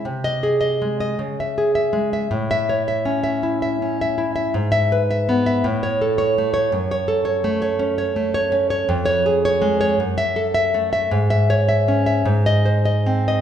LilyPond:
\new Staff \with { instrumentName = "Nylon-string guitar" } { \time 6/8 \key cis \minor \tempo 4. = 54 << { r16 dis''8 r4 e''8 r8. | r16 e''8 r2 r16 | r16 e''8 r4 cis''8 r8. | r16 cis''8 r2 r16 |
r16 cis''8 r4 e''8 r8. | r16 e''8 r4 dis''8 r8. | } \\ { bis,8 gis'16 dis''16 gis16 dis''16 cis8 gis'16 e''16 gis16 e''16 | a,8 cis''16 e''16 cis'16 e''16 e'16 e''16 cis'16 e''16 e'16 e''16 | gis,8 b'16 e''16 b16 e''16 a,8 a'16 cis''16 a16 cis''16 | fis,8 a'16 cis''16 a16 cis''16 cis'16 cis''16 a16 cis''16 cis'16 cis''16 |
eis,8 gis'16 cis''16 gis16 cis''16 fis,8 a'16 e''16 a16 e''16 | gis,8 cis''16 e''16 cis'16 e''16 gis,8 bis'16 dis''16 bis16 dis''16 | } >> }